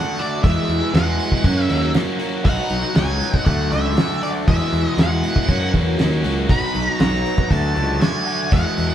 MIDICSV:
0, 0, Header, 1, 6, 480
1, 0, Start_track
1, 0, Tempo, 504626
1, 423, Time_signature, 4, 2, 24, 8
1, 8509, End_track
2, 0, Start_track
2, 0, Title_t, "Lead electric guitar"
2, 0, Program_c, 0, 29
2, 0, Note_on_c, 0, 78, 99
2, 185, Note_on_c, 0, 74, 69
2, 188, Note_off_c, 0, 78, 0
2, 407, Note_off_c, 0, 74, 0
2, 411, Note_on_c, 0, 76, 92
2, 898, Note_on_c, 0, 78, 83
2, 910, Note_off_c, 0, 76, 0
2, 1545, Note_off_c, 0, 78, 0
2, 1545, Note_on_c, 0, 76, 83
2, 1820, Note_off_c, 0, 76, 0
2, 2329, Note_on_c, 0, 78, 90
2, 2811, Note_off_c, 0, 78, 0
2, 2815, Note_on_c, 0, 80, 97
2, 3285, Note_off_c, 0, 80, 0
2, 3289, Note_on_c, 0, 78, 86
2, 3517, Note_off_c, 0, 78, 0
2, 3534, Note_on_c, 0, 76, 87
2, 4019, Note_off_c, 0, 76, 0
2, 4023, Note_on_c, 0, 74, 70
2, 4087, Note_off_c, 0, 74, 0
2, 4260, Note_on_c, 0, 76, 88
2, 4621, Note_off_c, 0, 76, 0
2, 4621, Note_on_c, 0, 75, 88
2, 4755, Note_off_c, 0, 75, 0
2, 4757, Note_on_c, 0, 78, 78
2, 5431, Note_off_c, 0, 78, 0
2, 6187, Note_on_c, 0, 83, 89
2, 6549, Note_off_c, 0, 83, 0
2, 6549, Note_on_c, 0, 82, 89
2, 6658, Note_off_c, 0, 82, 0
2, 6662, Note_on_c, 0, 82, 95
2, 7145, Note_off_c, 0, 82, 0
2, 7149, Note_on_c, 0, 81, 81
2, 7624, Note_on_c, 0, 80, 84
2, 7642, Note_off_c, 0, 81, 0
2, 8110, Note_off_c, 0, 80, 0
2, 8114, Note_on_c, 0, 78, 80
2, 8509, Note_off_c, 0, 78, 0
2, 8509, End_track
3, 0, Start_track
3, 0, Title_t, "Tonewheel organ"
3, 0, Program_c, 1, 16
3, 0, Note_on_c, 1, 57, 59
3, 0, Note_on_c, 1, 66, 54
3, 0, Note_on_c, 1, 74, 53
3, 0, Note_on_c, 1, 78, 66
3, 400, Note_off_c, 1, 66, 0
3, 407, Note_off_c, 1, 57, 0
3, 408, Note_off_c, 1, 74, 0
3, 419, Note_on_c, 1, 56, 66
3, 422, Note_on_c, 1, 64, 60
3, 423, Note_on_c, 1, 71, 55
3, 1369, Note_off_c, 1, 56, 0
3, 1370, Note_on_c, 1, 70, 52
3, 1371, Note_off_c, 1, 64, 0
3, 1371, Note_off_c, 1, 71, 0
3, 1371, Note_on_c, 1, 54, 60
3, 1372, Note_on_c, 1, 61, 49
3, 2324, Note_off_c, 1, 70, 0
3, 2325, Note_off_c, 1, 54, 0
3, 2325, Note_off_c, 1, 61, 0
3, 2343, Note_on_c, 1, 54, 60
3, 2344, Note_on_c, 1, 71, 61
3, 2349, Note_on_c, 1, 63, 61
3, 3292, Note_off_c, 1, 71, 0
3, 3293, Note_on_c, 1, 62, 54
3, 3294, Note_off_c, 1, 63, 0
3, 3299, Note_on_c, 1, 69, 54
3, 4242, Note_off_c, 1, 54, 0
3, 4247, Note_off_c, 1, 62, 0
3, 4250, Note_off_c, 1, 69, 0
3, 4261, Note_on_c, 1, 56, 66
3, 4269, Note_on_c, 1, 71, 58
3, 4270, Note_on_c, 1, 64, 58
3, 5212, Note_off_c, 1, 56, 0
3, 5216, Note_off_c, 1, 64, 0
3, 5216, Note_off_c, 1, 71, 0
3, 5220, Note_on_c, 1, 70, 52
3, 5222, Note_on_c, 1, 61, 55
3, 5223, Note_on_c, 1, 54, 55
3, 6173, Note_off_c, 1, 70, 0
3, 6174, Note_off_c, 1, 61, 0
3, 6177, Note_on_c, 1, 63, 55
3, 6177, Note_on_c, 1, 71, 53
3, 7103, Note_off_c, 1, 78, 0
3, 7132, Note_off_c, 1, 71, 0
3, 7133, Note_off_c, 1, 63, 0
3, 7151, Note_on_c, 1, 62, 57
3, 7152, Note_on_c, 1, 78, 68
3, 7156, Note_on_c, 1, 69, 53
3, 8080, Note_off_c, 1, 54, 0
3, 8095, Note_on_c, 1, 71, 59
3, 8101, Note_off_c, 1, 62, 0
3, 8103, Note_off_c, 1, 69, 0
3, 8103, Note_on_c, 1, 56, 64
3, 8109, Note_on_c, 1, 64, 63
3, 8509, Note_off_c, 1, 56, 0
3, 8509, Note_off_c, 1, 64, 0
3, 8509, Note_off_c, 1, 71, 0
3, 8509, Note_off_c, 1, 78, 0
3, 8509, End_track
4, 0, Start_track
4, 0, Title_t, "Overdriven electric guitar"
4, 0, Program_c, 2, 29
4, 0, Note_on_c, 2, 50, 61
4, 0, Note_on_c, 2, 57, 69
4, 0, Note_on_c, 2, 62, 74
4, 0, Note_on_c, 2, 66, 75
4, 161, Note_off_c, 2, 66, 0
4, 165, Note_on_c, 2, 66, 62
4, 168, Note_off_c, 2, 62, 0
4, 180, Note_on_c, 2, 62, 62
4, 183, Note_off_c, 2, 57, 0
4, 195, Note_on_c, 2, 57, 55
4, 398, Note_off_c, 2, 50, 0
4, 404, Note_on_c, 2, 40, 88
4, 407, Note_off_c, 2, 62, 0
4, 411, Note_on_c, 2, 47, 76
4, 414, Note_off_c, 2, 57, 0
4, 416, Note_on_c, 2, 52, 93
4, 422, Note_on_c, 2, 56, 93
4, 424, Note_on_c, 2, 59, 86
4, 428, Note_off_c, 2, 66, 0
4, 431, Note_on_c, 2, 68, 94
4, 870, Note_off_c, 2, 40, 0
4, 879, Note_off_c, 2, 47, 0
4, 882, Note_on_c, 2, 40, 83
4, 884, Note_off_c, 2, 52, 0
4, 888, Note_off_c, 2, 56, 0
4, 891, Note_on_c, 2, 47, 83
4, 894, Note_off_c, 2, 59, 0
4, 895, Note_on_c, 2, 52, 74
4, 899, Note_off_c, 2, 68, 0
4, 899, Note_on_c, 2, 56, 83
4, 905, Note_on_c, 2, 59, 83
4, 911, Note_on_c, 2, 68, 88
4, 1356, Note_off_c, 2, 40, 0
4, 1361, Note_off_c, 2, 47, 0
4, 1361, Note_on_c, 2, 42, 78
4, 1363, Note_off_c, 2, 52, 0
4, 1365, Note_off_c, 2, 56, 0
4, 1368, Note_off_c, 2, 59, 0
4, 1371, Note_off_c, 2, 68, 0
4, 1371, Note_on_c, 2, 49, 78
4, 1378, Note_on_c, 2, 54, 85
4, 1382, Note_on_c, 2, 58, 76
4, 1385, Note_on_c, 2, 61, 90
4, 1393, Note_on_c, 2, 66, 91
4, 1598, Note_off_c, 2, 66, 0
4, 1601, Note_off_c, 2, 61, 0
4, 1601, Note_on_c, 2, 66, 64
4, 1610, Note_off_c, 2, 58, 0
4, 1612, Note_on_c, 2, 61, 54
4, 1622, Note_on_c, 2, 58, 58
4, 1627, Note_off_c, 2, 54, 0
4, 1631, Note_on_c, 2, 54, 45
4, 1839, Note_off_c, 2, 58, 0
4, 1840, Note_off_c, 2, 54, 0
4, 1843, Note_on_c, 2, 54, 69
4, 1850, Note_off_c, 2, 42, 0
4, 1850, Note_on_c, 2, 58, 72
4, 1851, Note_off_c, 2, 61, 0
4, 1855, Note_off_c, 2, 49, 0
4, 1863, Note_on_c, 2, 61, 76
4, 1865, Note_off_c, 2, 66, 0
4, 1869, Note_on_c, 2, 66, 80
4, 2079, Note_off_c, 2, 66, 0
4, 2083, Note_off_c, 2, 61, 0
4, 2083, Note_on_c, 2, 66, 69
4, 2092, Note_off_c, 2, 58, 0
4, 2095, Note_on_c, 2, 61, 56
4, 2103, Note_on_c, 2, 58, 63
4, 2105, Note_off_c, 2, 54, 0
4, 2109, Note_on_c, 2, 54, 59
4, 2318, Note_on_c, 2, 47, 81
4, 2322, Note_off_c, 2, 54, 0
4, 2323, Note_off_c, 2, 61, 0
4, 2326, Note_on_c, 2, 54, 92
4, 2327, Note_off_c, 2, 58, 0
4, 2334, Note_on_c, 2, 59, 97
4, 2343, Note_off_c, 2, 66, 0
4, 2343, Note_on_c, 2, 63, 98
4, 2347, Note_on_c, 2, 66, 103
4, 2785, Note_off_c, 2, 47, 0
4, 2796, Note_on_c, 2, 47, 77
4, 2799, Note_off_c, 2, 59, 0
4, 2804, Note_off_c, 2, 54, 0
4, 2806, Note_off_c, 2, 63, 0
4, 2808, Note_on_c, 2, 54, 87
4, 2811, Note_on_c, 2, 59, 83
4, 2818, Note_on_c, 2, 63, 84
4, 2821, Note_off_c, 2, 66, 0
4, 2825, Note_on_c, 2, 66, 86
4, 3273, Note_off_c, 2, 47, 0
4, 3280, Note_off_c, 2, 59, 0
4, 3284, Note_off_c, 2, 63, 0
4, 3287, Note_off_c, 2, 54, 0
4, 3291, Note_on_c, 2, 50, 85
4, 3297, Note_on_c, 2, 57, 93
4, 3310, Note_off_c, 2, 66, 0
4, 3311, Note_on_c, 2, 62, 84
4, 3314, Note_on_c, 2, 66, 94
4, 3526, Note_off_c, 2, 66, 0
4, 3530, Note_on_c, 2, 66, 55
4, 3532, Note_off_c, 2, 62, 0
4, 3543, Note_on_c, 2, 62, 53
4, 3547, Note_off_c, 2, 57, 0
4, 3558, Note_on_c, 2, 57, 48
4, 3759, Note_off_c, 2, 50, 0
4, 3768, Note_off_c, 2, 57, 0
4, 3771, Note_on_c, 2, 50, 65
4, 3777, Note_off_c, 2, 62, 0
4, 3779, Note_on_c, 2, 57, 70
4, 3788, Note_on_c, 2, 62, 80
4, 3793, Note_off_c, 2, 66, 0
4, 3797, Note_on_c, 2, 66, 73
4, 4001, Note_off_c, 2, 66, 0
4, 4005, Note_on_c, 2, 66, 59
4, 4008, Note_off_c, 2, 62, 0
4, 4018, Note_off_c, 2, 57, 0
4, 4020, Note_on_c, 2, 62, 56
4, 4030, Note_on_c, 2, 57, 52
4, 4241, Note_off_c, 2, 50, 0
4, 4241, Note_on_c, 2, 40, 82
4, 4245, Note_off_c, 2, 62, 0
4, 4250, Note_off_c, 2, 57, 0
4, 4251, Note_on_c, 2, 47, 86
4, 4258, Note_on_c, 2, 52, 91
4, 4264, Note_on_c, 2, 56, 92
4, 4266, Note_on_c, 2, 59, 93
4, 4270, Note_off_c, 2, 66, 0
4, 4273, Note_on_c, 2, 68, 96
4, 4713, Note_off_c, 2, 40, 0
4, 4719, Note_off_c, 2, 47, 0
4, 4725, Note_on_c, 2, 40, 76
4, 4727, Note_off_c, 2, 52, 0
4, 4731, Note_on_c, 2, 47, 84
4, 4732, Note_off_c, 2, 56, 0
4, 4735, Note_off_c, 2, 59, 0
4, 4738, Note_on_c, 2, 52, 77
4, 4742, Note_off_c, 2, 68, 0
4, 4743, Note_on_c, 2, 56, 83
4, 4747, Note_on_c, 2, 59, 79
4, 4753, Note_on_c, 2, 68, 83
4, 5198, Note_off_c, 2, 40, 0
4, 5202, Note_off_c, 2, 47, 0
4, 5203, Note_on_c, 2, 42, 78
4, 5205, Note_off_c, 2, 52, 0
4, 5208, Note_off_c, 2, 56, 0
4, 5210, Note_off_c, 2, 59, 0
4, 5210, Note_on_c, 2, 49, 73
4, 5213, Note_off_c, 2, 68, 0
4, 5216, Note_on_c, 2, 54, 83
4, 5220, Note_on_c, 2, 58, 83
4, 5229, Note_on_c, 2, 61, 86
4, 5233, Note_on_c, 2, 66, 83
4, 5444, Note_off_c, 2, 66, 0
4, 5446, Note_off_c, 2, 61, 0
4, 5448, Note_on_c, 2, 66, 62
4, 5453, Note_off_c, 2, 58, 0
4, 5458, Note_on_c, 2, 61, 52
4, 5465, Note_on_c, 2, 58, 46
4, 5472, Note_off_c, 2, 54, 0
4, 5475, Note_on_c, 2, 54, 44
4, 5683, Note_off_c, 2, 54, 0
4, 5687, Note_on_c, 2, 54, 64
4, 5688, Note_off_c, 2, 58, 0
4, 5693, Note_off_c, 2, 42, 0
4, 5695, Note_off_c, 2, 61, 0
4, 5696, Note_off_c, 2, 49, 0
4, 5700, Note_on_c, 2, 58, 72
4, 5706, Note_on_c, 2, 61, 67
4, 5711, Note_off_c, 2, 66, 0
4, 5715, Note_on_c, 2, 66, 73
4, 5924, Note_off_c, 2, 66, 0
4, 5928, Note_on_c, 2, 66, 72
4, 5929, Note_off_c, 2, 61, 0
4, 5938, Note_off_c, 2, 58, 0
4, 5940, Note_on_c, 2, 61, 61
4, 5949, Note_on_c, 2, 58, 61
4, 5954, Note_off_c, 2, 54, 0
4, 5958, Note_on_c, 2, 54, 48
4, 6166, Note_on_c, 2, 47, 89
4, 6167, Note_off_c, 2, 61, 0
4, 6172, Note_off_c, 2, 54, 0
4, 6172, Note_off_c, 2, 58, 0
4, 6176, Note_on_c, 2, 54, 81
4, 6181, Note_on_c, 2, 59, 88
4, 6185, Note_on_c, 2, 63, 90
4, 6192, Note_off_c, 2, 66, 0
4, 6195, Note_on_c, 2, 66, 91
4, 6635, Note_off_c, 2, 47, 0
4, 6646, Note_on_c, 2, 47, 77
4, 6648, Note_off_c, 2, 54, 0
4, 6648, Note_off_c, 2, 59, 0
4, 6652, Note_on_c, 2, 54, 80
4, 6656, Note_off_c, 2, 63, 0
4, 6660, Note_on_c, 2, 59, 86
4, 6668, Note_off_c, 2, 66, 0
4, 6668, Note_on_c, 2, 63, 86
4, 6672, Note_on_c, 2, 66, 91
4, 7122, Note_off_c, 2, 47, 0
4, 7125, Note_off_c, 2, 54, 0
4, 7128, Note_off_c, 2, 59, 0
4, 7129, Note_on_c, 2, 50, 81
4, 7132, Note_off_c, 2, 63, 0
4, 7140, Note_on_c, 2, 57, 82
4, 7149, Note_on_c, 2, 62, 88
4, 7151, Note_off_c, 2, 66, 0
4, 7155, Note_on_c, 2, 66, 91
4, 7363, Note_off_c, 2, 66, 0
4, 7367, Note_on_c, 2, 66, 61
4, 7369, Note_off_c, 2, 62, 0
4, 7381, Note_on_c, 2, 62, 60
4, 7383, Note_off_c, 2, 57, 0
4, 7394, Note_on_c, 2, 57, 52
4, 7593, Note_off_c, 2, 50, 0
4, 7604, Note_on_c, 2, 50, 69
4, 7606, Note_off_c, 2, 57, 0
4, 7613, Note_off_c, 2, 62, 0
4, 7617, Note_on_c, 2, 57, 61
4, 7624, Note_on_c, 2, 62, 65
4, 7627, Note_off_c, 2, 66, 0
4, 7631, Note_on_c, 2, 66, 68
4, 7847, Note_off_c, 2, 66, 0
4, 7851, Note_on_c, 2, 66, 68
4, 7853, Note_off_c, 2, 62, 0
4, 7864, Note_on_c, 2, 62, 53
4, 7867, Note_off_c, 2, 57, 0
4, 7879, Note_on_c, 2, 57, 53
4, 8082, Note_off_c, 2, 50, 0
4, 8092, Note_off_c, 2, 62, 0
4, 8092, Note_on_c, 2, 40, 91
4, 8098, Note_on_c, 2, 47, 96
4, 8099, Note_off_c, 2, 57, 0
4, 8104, Note_on_c, 2, 52, 91
4, 8110, Note_on_c, 2, 56, 97
4, 8116, Note_on_c, 2, 59, 105
4, 8117, Note_off_c, 2, 66, 0
4, 8121, Note_on_c, 2, 68, 93
4, 8509, Note_off_c, 2, 40, 0
4, 8509, Note_off_c, 2, 47, 0
4, 8509, Note_off_c, 2, 52, 0
4, 8509, Note_off_c, 2, 56, 0
4, 8509, Note_off_c, 2, 59, 0
4, 8509, Note_off_c, 2, 68, 0
4, 8509, End_track
5, 0, Start_track
5, 0, Title_t, "Picked electric bass"
5, 0, Program_c, 3, 34
5, 415, Note_on_c, 3, 40, 84
5, 530, Note_off_c, 3, 40, 0
5, 654, Note_on_c, 3, 40, 78
5, 769, Note_off_c, 3, 40, 0
5, 890, Note_on_c, 3, 40, 92
5, 1117, Note_off_c, 3, 40, 0
5, 1371, Note_on_c, 3, 42, 82
5, 1597, Note_off_c, 3, 42, 0
5, 1616, Note_on_c, 3, 39, 87
5, 1839, Note_off_c, 3, 39, 0
5, 2333, Note_on_c, 3, 35, 87
5, 2447, Note_off_c, 3, 35, 0
5, 2574, Note_on_c, 3, 35, 81
5, 2687, Note_off_c, 3, 35, 0
5, 2819, Note_on_c, 3, 37, 86
5, 3041, Note_off_c, 3, 37, 0
5, 3294, Note_on_c, 3, 38, 79
5, 3518, Note_off_c, 3, 38, 0
5, 3532, Note_on_c, 3, 37, 82
5, 3757, Note_off_c, 3, 37, 0
5, 4258, Note_on_c, 3, 40, 82
5, 4370, Note_off_c, 3, 40, 0
5, 4495, Note_on_c, 3, 40, 78
5, 4608, Note_off_c, 3, 40, 0
5, 4731, Note_on_c, 3, 40, 89
5, 4957, Note_off_c, 3, 40, 0
5, 5219, Note_on_c, 3, 42, 81
5, 5442, Note_off_c, 3, 42, 0
5, 5457, Note_on_c, 3, 40, 75
5, 5675, Note_off_c, 3, 40, 0
5, 5694, Note_on_c, 3, 39, 71
5, 5914, Note_off_c, 3, 39, 0
5, 5935, Note_on_c, 3, 37, 69
5, 6154, Note_off_c, 3, 37, 0
5, 6175, Note_on_c, 3, 35, 78
5, 6290, Note_off_c, 3, 35, 0
5, 6419, Note_on_c, 3, 35, 78
5, 6532, Note_off_c, 3, 35, 0
5, 6660, Note_on_c, 3, 35, 89
5, 6884, Note_off_c, 3, 35, 0
5, 7139, Note_on_c, 3, 38, 79
5, 7364, Note_off_c, 3, 38, 0
5, 7383, Note_on_c, 3, 37, 83
5, 7606, Note_off_c, 3, 37, 0
5, 8102, Note_on_c, 3, 40, 86
5, 8216, Note_off_c, 3, 40, 0
5, 8352, Note_on_c, 3, 40, 78
5, 8461, Note_off_c, 3, 40, 0
5, 8509, End_track
6, 0, Start_track
6, 0, Title_t, "Drums"
6, 187, Note_on_c, 9, 46, 44
6, 282, Note_off_c, 9, 46, 0
6, 418, Note_on_c, 9, 36, 102
6, 421, Note_on_c, 9, 46, 64
6, 513, Note_off_c, 9, 36, 0
6, 516, Note_off_c, 9, 46, 0
6, 660, Note_on_c, 9, 46, 41
6, 755, Note_off_c, 9, 46, 0
6, 900, Note_on_c, 9, 46, 59
6, 908, Note_on_c, 9, 38, 100
6, 995, Note_off_c, 9, 46, 0
6, 1003, Note_off_c, 9, 38, 0
6, 1137, Note_on_c, 9, 46, 43
6, 1232, Note_off_c, 9, 46, 0
6, 1254, Note_on_c, 9, 36, 75
6, 1349, Note_off_c, 9, 36, 0
6, 1372, Note_on_c, 9, 46, 58
6, 1373, Note_on_c, 9, 36, 81
6, 1467, Note_off_c, 9, 46, 0
6, 1468, Note_off_c, 9, 36, 0
6, 1611, Note_on_c, 9, 46, 45
6, 1706, Note_off_c, 9, 46, 0
6, 1849, Note_on_c, 9, 46, 67
6, 1856, Note_on_c, 9, 38, 94
6, 1944, Note_off_c, 9, 46, 0
6, 1952, Note_off_c, 9, 38, 0
6, 2089, Note_on_c, 9, 46, 51
6, 2184, Note_off_c, 9, 46, 0
6, 2329, Note_on_c, 9, 46, 70
6, 2331, Note_on_c, 9, 36, 100
6, 2424, Note_off_c, 9, 46, 0
6, 2426, Note_off_c, 9, 36, 0
6, 2568, Note_on_c, 9, 46, 44
6, 2663, Note_off_c, 9, 46, 0
6, 2807, Note_on_c, 9, 46, 60
6, 2815, Note_on_c, 9, 38, 94
6, 2903, Note_off_c, 9, 46, 0
6, 2910, Note_off_c, 9, 38, 0
6, 3050, Note_on_c, 9, 46, 43
6, 3145, Note_off_c, 9, 46, 0
6, 3174, Note_on_c, 9, 36, 80
6, 3269, Note_off_c, 9, 36, 0
6, 3293, Note_on_c, 9, 46, 54
6, 3296, Note_on_c, 9, 36, 80
6, 3388, Note_off_c, 9, 46, 0
6, 3391, Note_off_c, 9, 36, 0
6, 3539, Note_on_c, 9, 46, 42
6, 3634, Note_off_c, 9, 46, 0
6, 3777, Note_on_c, 9, 46, 60
6, 3785, Note_on_c, 9, 38, 109
6, 3872, Note_off_c, 9, 46, 0
6, 3880, Note_off_c, 9, 38, 0
6, 4021, Note_on_c, 9, 46, 43
6, 4116, Note_off_c, 9, 46, 0
6, 4259, Note_on_c, 9, 36, 103
6, 4262, Note_on_c, 9, 46, 57
6, 4354, Note_off_c, 9, 36, 0
6, 4357, Note_off_c, 9, 46, 0
6, 4500, Note_on_c, 9, 46, 42
6, 4595, Note_off_c, 9, 46, 0
6, 4741, Note_on_c, 9, 46, 59
6, 4748, Note_on_c, 9, 38, 103
6, 4836, Note_off_c, 9, 46, 0
6, 4843, Note_off_c, 9, 38, 0
6, 4982, Note_on_c, 9, 46, 45
6, 5077, Note_off_c, 9, 46, 0
6, 5099, Note_on_c, 9, 36, 81
6, 5194, Note_off_c, 9, 36, 0
6, 5218, Note_on_c, 9, 36, 80
6, 5218, Note_on_c, 9, 46, 57
6, 5313, Note_off_c, 9, 36, 0
6, 5313, Note_off_c, 9, 46, 0
6, 5458, Note_on_c, 9, 36, 71
6, 5459, Note_on_c, 9, 46, 46
6, 5553, Note_off_c, 9, 36, 0
6, 5554, Note_off_c, 9, 46, 0
6, 5698, Note_on_c, 9, 46, 66
6, 5706, Note_on_c, 9, 38, 104
6, 5793, Note_off_c, 9, 46, 0
6, 5801, Note_off_c, 9, 38, 0
6, 5938, Note_on_c, 9, 46, 50
6, 6033, Note_off_c, 9, 46, 0
6, 6177, Note_on_c, 9, 36, 104
6, 6177, Note_on_c, 9, 46, 64
6, 6272, Note_off_c, 9, 36, 0
6, 6272, Note_off_c, 9, 46, 0
6, 6419, Note_on_c, 9, 46, 50
6, 6514, Note_off_c, 9, 46, 0
6, 6658, Note_on_c, 9, 46, 61
6, 6666, Note_on_c, 9, 38, 99
6, 6753, Note_off_c, 9, 46, 0
6, 6761, Note_off_c, 9, 38, 0
6, 6788, Note_on_c, 9, 38, 28
6, 6883, Note_off_c, 9, 38, 0
6, 6904, Note_on_c, 9, 46, 47
6, 6999, Note_off_c, 9, 46, 0
6, 7020, Note_on_c, 9, 36, 80
6, 7115, Note_off_c, 9, 36, 0
6, 7140, Note_on_c, 9, 36, 73
6, 7141, Note_on_c, 9, 46, 60
6, 7236, Note_off_c, 9, 36, 0
6, 7236, Note_off_c, 9, 46, 0
6, 7382, Note_on_c, 9, 46, 41
6, 7477, Note_off_c, 9, 46, 0
6, 7623, Note_on_c, 9, 46, 64
6, 7631, Note_on_c, 9, 38, 106
6, 7718, Note_off_c, 9, 46, 0
6, 7726, Note_off_c, 9, 38, 0
6, 7869, Note_on_c, 9, 46, 49
6, 7964, Note_off_c, 9, 46, 0
6, 8105, Note_on_c, 9, 36, 102
6, 8105, Note_on_c, 9, 46, 63
6, 8200, Note_off_c, 9, 36, 0
6, 8200, Note_off_c, 9, 46, 0
6, 8352, Note_on_c, 9, 46, 43
6, 8447, Note_off_c, 9, 46, 0
6, 8509, End_track
0, 0, End_of_file